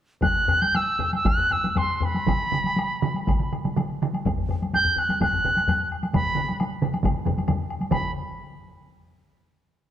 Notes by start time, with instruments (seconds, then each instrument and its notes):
0.22 piccolo F#6, taiko, taiko low-mid, taiko high, high woodblock
0.48 taiko low-mid, high woodblock
0.62 piccolo G6, taiko high, high woodblock
0.74 piccolo E6, taiko high, high woodblock
0.99 taiko low-mid, high woodblock
1.13 piccolo E6, taiko high, high woodblock
1.24 piccolo F#6, taiko, taiko low-mid, taiko high, high woodblock
1.38 taiko low-mid
1.51 piccolo E6, taiko low-mid, high woodblock
1.63 taiko low-mid, taiko high, high woodblock
1.70 piccolo E6
1.75 piccolo C6, taiko low-mid, taiko high, high woodblock
1.97 piccolo C6, taiko low-mid
2.03 piccolo B5, high woodblock
2.15 taiko high, high woodblock
2.26 taiko, taiko mid, taiko high, high woodblock
2.52 taiko mid, high woodblock
2.64 taiko high, high woodblock
2.76 taiko high, high woodblock
3.02 taiko mid, high woodblock
3.14 taiko high, high woodblock
3.27 taiko, taiko mid, taiko high, high woodblock
3.39 taiko mid
3.52 taiko mid, high woodblock
3.64 taiko mid, taiko high, high woodblock
3.77 taiko mid, taiko high, high woodblock
4.02 taiko mid, high woodblock
4.13 taiko high, high woodblock
4.25 taiko, taiko low-mid, taiko high, high woodblock
4.37 taiko low-mid
4.49 taiko low-mid, high woodblock
4.62 taiko high, high woodblock
4.73 piccolo G6, taiko low-mid, taiko high, high woodblock
4.85 taiko low-mid
4.97 piccolo F#6, taiko low-mid, high woodblock
5.09 taiko low-mid, taiko high, high woodblock
5.20 piccolo F#6, taiko, taiko low-mid, taiko high, high woodblock
5.33 taiko low-mid
5.44 taiko low-mid, high woodblock
5.57 taiko high, high woodblock
5.68 taiko low-mid, taiko high, high woodblock
5.92 high woodblock
6.03 taiko high, high woodblock
6.13 piccolo B5, taiko, taiko low-mid, taiko mid, taiko high, high woodblock
6.35 taiko low-mid, taiko mid, high woodblock
6.48 taiko high, high woodblock
6.60 taiko high, high woodblock
6.82 taiko low-mid, taiko mid, high woodblock
6.94 taiko high, high woodblock
7.03 taiko, taiko low-mid, taiko mid, taiko high, high woodblock
7.25 taiko low-mid, taiko mid, taiko high, high woodblock
7.38 taiko high, high woodblock
7.48 taiko low-mid, taiko mid, taiko high, high woodblock
7.70 high woodblock
7.81 taiko high, high woodblock
7.91 piccolo B5, taiko, taiko low-mid, taiko mid, taiko high, high woodblock